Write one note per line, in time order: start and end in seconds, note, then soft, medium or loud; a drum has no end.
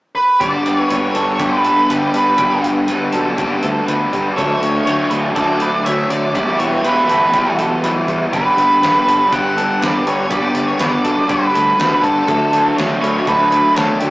0.15 0.42 B4 medium
0.40 0.57 G1 medium
0.40 1.41 G2 medium
0.40 0.90 D3 medium
0.40 0.69 G3 medium
0.40 1.18 G4 medium
0.40 0.79 D5 loud
0.40 kick medium
0.40 open hi-hat medium
0.45 0.68 B3 medium
0.45 0.66 D4 medium
0.66 0.83 G1 medium
0.66 0.92 G3 medium
0.66 0.93 B3 medium
0.66 0.94 D4 medium
0.66 open hi-hat soft
0.79 0.91 C#5 loud
0.89 1.07 G1 medium
0.89 1.41 D3 medium
0.89 1.18 G3 medium
0.89 1.14 B4 medium
0.89 1.42 C#5 medium
0.89 open hi-hat medium
0.94 1.17 B3 medium
0.94 1.15 D4 medium
1.15 1.32 G1 medium
1.15 1.43 B3 medium
1.15 1.44 D4 medium
1.15 1.40 A4 medium
1.15 open hi-hat soft
1.19 1.42 G3 medium
1.39 1.73 G1 medium
1.39 1.90 G2 medium
1.39 1.90 D3 medium
1.39 1.64 G4 medium
1.39 1.92 B4 medium
1.39 kick loud
1.39 open hi-hat medium
1.43 1.68 G3 medium
1.43 1.66 B3 loud
1.43 1.66 D4 medium
1.64 1.92 B3 medium
1.64 1.94 D4 medium
1.64 1.88 A4 medium
1.64 open hi-hat soft
1.69 1.91 G3 medium
1.88 2.06 G1 medium
1.88 2.40 D3 medium
1.88 2.16 G4 medium
1.88 2.39 B4 medium
1.88 open hi-hat medium
1.93 2.17 G3 medium
1.93 2.15 B3 medium
1.93 2.15 D4 medium
2.14 2.30 G2 medium
2.14 2.42 B3 medium
2.14 2.44 D4 medium
2.14 2.61 B4 medium
2.14 open hi-hat soft
2.18 2.41 G3 medium
2.38 2.55 G1 medium
2.38 2.89 G2 medium
2.38 2.88 G4 medium
2.38 kick medium
2.38 open hi-hat medium
2.42 2.89 D3 medium
2.42 2.66 G3 medium
2.42 2.65 B3 medium
2.42 2.65 D4 loud
2.64 2.81 G1 medium
2.64 2.90 G3 medium
2.64 2.91 B3 medium
2.64 2.92 D4 medium
2.64 open hi-hat soft
2.87 3.06 G1 medium
2.87 3.39 D3 medium
2.87 3.17 G3 medium
2.87 3.12 B4 medium
2.87 open hi-hat medium
2.92 3.16 B3 medium
2.92 3.15 D4 medium
3.12 3.30 B1 medium
3.12 3.42 D4 medium
3.12 3.37 A4 medium
3.12 open hi-hat soft
3.17 3.40 G3 medium
3.17 3.41 B3 medium
3.37 3.55 G2 medium
3.37 3.88 G2 medium
3.37 3.86 D3 medium
3.37 3.62 G4 medium
3.37 kick loud
3.37 open hi-hat medium
3.41 3.66 G3 medium
3.41 3.65 B3 medium
3.41 3.64 D4 medium
3.63 3.79 D2 medium
3.63 3.89 B3 medium
3.63 3.90 D4 medium
3.63 3.86 A4 medium
3.63 open hi-hat soft
3.67 3.88 G3 medium
3.87 4.04 D2 medium
3.87 4.36 D3 medium
3.87 4.15 G3 medium
3.87 4.13 B3 medium
3.87 4.36 B4 medium
3.87 open hi-hat medium
3.91 4.12 D4 medium
4.12 4.29 G2 medium
4.12 4.37 B3 medium
4.12 4.40 D4 medium
4.12 kick medium
4.12 open hi-hat soft
4.17 4.38 G3 medium
4.36 4.54 D2 medium
4.36 4.86 D3 medium
4.36 4.64 F#3 medium
4.36 4.63 A3 medium
4.36 4.85 A4 medium
4.36 5.07 C#5 loud
4.36 kick loud
4.36 open hi-hat medium
4.40 4.62 D4 loud
4.62 4.78 D2 medium
4.62 4.87 F#3 soft
4.62 4.88 A3 medium
4.62 4.90 D4 medium
4.62 open hi-hat soft
4.85 5.02 D2 medium
4.85 5.36 D3 medium
4.85 5.14 F#3 medium
4.85 5.10 C#5 medium
4.85 open hi-hat medium
4.90 5.13 A3 medium
4.90 5.11 D4 medium
5.10 5.28 D2 medium
5.10 5.39 D4 medium
5.10 5.35 B4 medium
5.10 open hi-hat soft
5.14 5.37 F#3 medium
5.14 5.38 A3 medium
5.35 5.69 D2 medium
5.35 5.86 D3 medium
5.35 5.64 F#3 medium
5.35 5.62 A3 medium
5.35 5.60 A4 medium
5.35 5.85 D5 loud
5.35 kick loud
5.35 open hi-hat medium
5.40 5.61 D4 loud
5.60 5.88 A3 medium
5.60 5.90 D4 medium
5.60 5.86 B4 medium
5.60 open hi-hat soft
5.65 5.87 F#3 medium
5.85 6.03 D2 medium
5.85 6.34 D3 medium
5.85 6.13 F#3 medium
5.85 6.35 C#5 medium
5.85 6.10 E5 medium
5.85 open hi-hat medium
5.89 6.12 A3 medium
5.89 6.12 D4 medium
6.10 6.27 D3 medium
6.10 6.35 A3 medium
6.10 6.39 D4 medium
6.10 6.33 D5 medium
6.10 open hi-hat soft
6.14 6.35 F#3 medium
6.34 6.51 E1 medium
6.34 6.83 E3 medium
6.34 6.63 G3 medium
6.34 7.12 G4 medium
6.34 6.58 D5 medium
6.34 kick loud
6.34 open hi-hat medium
6.38 6.62 B3 medium
6.38 6.59 E4 medium
6.59 6.76 E1 medium
6.59 6.87 B3 medium
6.59 6.87 E4 medium
6.59 6.85 C#5 medium
6.59 open hi-hat soft
6.64 6.86 G3 medium
6.83 7.00 E1 medium
6.83 7.33 E3 medium
6.83 7.12 G3 medium
6.83 7.11 B3 medium
6.83 7.54 B4 medium
6.83 7.09 B4 medium
6.83 open hi-hat medium
6.88 7.09 E4 medium
7.09 7.25 G1 medium
7.09 7.35 G3 medium
7.09 7.36 B3 medium
7.09 7.36 E4 medium
7.09 7.34 A4 medium
7.09 open hi-hat soft
7.33 7.50 E2 medium
7.33 7.82 E3 medium
7.33 7.62 G3 medium
7.33 7.60 B3 medium
7.33 7.61 G4 medium
7.33 kick loud
7.33 open hi-hat medium
7.37 7.58 E4 medium
7.58 7.74 B1 medium
7.58 7.85 B3 medium
7.58 7.85 E4 medium
7.58 7.83 A4 medium
7.58 open hi-hat soft
7.62 7.84 G3 medium
7.83 7.99 B1 medium
7.83 8.31 E3 medium
7.83 8.11 G3 medium
7.83 8.09 B3 medium
7.83 8.06 E4 medium
7.83 8.82 B4 medium
7.83 open hi-hat medium
8.07 8.24 E2 medium
8.07 8.33 G3 medium
8.07 8.34 B3 medium
8.07 8.31 E4 medium
8.07 kick medium
8.07 open hi-hat soft
8.32 8.49 G1 medium
8.32 9.32 G2 medium
8.32 8.81 D3 medium
8.32 8.60 G3 medium
8.32 8.59 B3 medium
8.32 8.57 D4 medium
8.32 9.09 G4 medium
8.32 9.35 B4 medium
8.32 kick medium
8.32 open hi-hat medium
8.57 8.74 G1 medium
8.57 8.83 G3 medium
8.57 8.84 B3 medium
8.57 8.85 D4 medium
8.57 open hi-hat soft
8.81 8.98 G1 medium
8.81 9.32 D3 medium
8.81 9.09 G3 medium
8.81 9.08 B3 medium
8.81 9.06 B4 medium
8.81 snare medium
8.81 open hi-hat medium
8.86 9.06 D4 medium
9.06 9.23 G1 medium
9.06 9.33 G3 medium
9.06 9.34 B3 medium
9.06 9.35 D4 medium
9.06 9.31 A4 medium
9.06 open hi-hat soft
9.32 9.65 G1 medium
9.32 9.82 G2 medium
9.32 9.81 D3 medium
9.32 9.60 G3 medium
9.32 9.59 B3 medium
9.32 9.58 D4 loud
9.32 9.57 G4 medium
9.32 9.70 F#5 loud
9.32 kick loud
9.32 open hi-hat medium
9.57 9.84 B3 medium
9.57 9.85 D4 medium
9.57 9.81 A4 medium
9.57 open hi-hat soft
9.61 9.82 G3 medium
9.71 9.82 F#5 medium
9.81 9.97 G1 medium
9.81 10.31 D3 medium
9.81 10.08 G3 medium
9.81 10.08 B3 medium
9.81 10.31 B4 medium
9.81 10.07 D5 medium
9.81 snare loud
9.81 open hi-hat medium
9.85 10.06 D4 medium
10.06 10.22 G2 medium
10.06 10.32 B3 medium
10.06 10.34 D4 medium
10.06 10.31 C#5 medium
10.06 open hi-hat soft
10.10 10.31 G3 medium
10.30 10.47 G1 medium
10.30 10.80 G2 medium
10.30 10.79 D3 medium
10.30 10.57 G3 medium
10.30 10.56 B3 medium
10.30 10.56 D4 medium
10.30 10.80 G4 medium
10.30 10.67 D5 loud
10.30 kick medium
10.30 open hi-hat medium
10.55 10.71 G1 medium
10.55 10.79 G3 medium
10.55 10.81 B3 medium
10.55 10.83 D4 medium
10.55 open hi-hat soft
10.67 10.80 C#5 medium
10.79 10.96 G1 medium
10.79 11.29 D3 medium
10.79 11.07 G3 medium
10.79 11.05 B3 medium
10.79 11.04 D4 medium
10.79 11.04 B4 medium
10.79 11.29 D5 medium
10.79 snare medium
10.79 open hi-hat medium
11.04 11.20 B1 medium
11.04 11.30 B3 medium
11.04 11.31 D4 medium
11.04 11.29 A4 medium
11.04 open hi-hat medium
11.08 11.30 G3 medium
11.29 11.79 G2 medium
11.29 11.46 G2 medium
11.29 11.77 D3 medium
11.29 11.56 G3 medium
11.29 11.55 B3 medium
11.29 11.53 D4 medium
11.29 11.54 G4 medium
11.29 12.06 B4 medium
11.29 kick loud
11.29 open hi-hat medium
11.54 11.71 D2 medium
11.54 11.78 G3 medium
11.54 11.80 B3 medium
11.54 11.81 D4 medium
11.54 11.79 A4 medium
11.54 open hi-hat soft
11.78 11.95 D2 medium
11.78 12.27 D3 medium
11.78 12.07 G3 medium
11.78 12.05 B3 medium
11.78 12.03 D4 medium
11.78 12.28 B4 medium
11.78 snare loud
11.78 open hi-hat medium
12.02 12.20 G2 medium
12.02 12.27 D4 medium
12.02 12.73 A4 medium
12.02 kick medium
12.02 open hi-hat soft
12.06 12.29 G3 medium
12.06 12.28 B3 medium
12.28 12.45 D2 medium
12.28 12.76 D3 medium
12.28 12.55 F#3 medium
12.28 12.54 A3 medium
12.28 13.05 A4 medium
12.28 kick loud
12.28 open hi-hat medium
12.32 12.52 D4 loud
12.53 12.70 D2 medium
12.53 12.77 F#3 medium
12.53 12.79 A3 medium
12.53 12.78 D4 medium
12.53 open hi-hat soft
12.76 12.95 D2 medium
12.76 13.25 D3 medium
12.76 13.03 F#3 medium
12.76 13.03 A3 medium
12.76 13.00 D4 medium
12.76 13.01 C#5 medium
12.76 snare loud
12.76 open hi-hat medium
13.01 13.18 D2 medium
13.01 13.27 F#3 medium
13.01 13.27 A3 medium
13.01 13.28 D4 medium
13.01 13.27 B4 medium
13.01 13.26 C#5 loud
13.01 open hi-hat soft
13.26 13.60 D2 medium
13.26 13.75 D3 medium
13.26 13.52 F#3 medium
13.26 13.51 A3 medium
13.26 13.49 D4 loud
13.26 13.52 A4 medium
13.26 13.78 B4 loud
13.26 kick loud
13.26 open hi-hat medium
13.50 13.76 F#3 medium
13.50 13.77 A3 medium
13.50 13.78 D4 medium
13.50 13.75 B4 medium
13.50 open hi-hat soft
13.74 13.94 D2 medium
13.74 14.10 D3 medium
13.74 14.03 F#3 medium
13.74 13.99 A4 medium
13.74 14.10 C#5 medium
13.74 snare loud
13.74 open hi-hat medium
13.78 14.01 A3 medium
13.78 13.99 D4 medium
13.99 14.10 D3 medium
13.99 14.10 A3 medium
13.99 14.10 D4 medium
13.99 14.10 G4 medium
13.99 open hi-hat soft
14.04 14.10 F#3 medium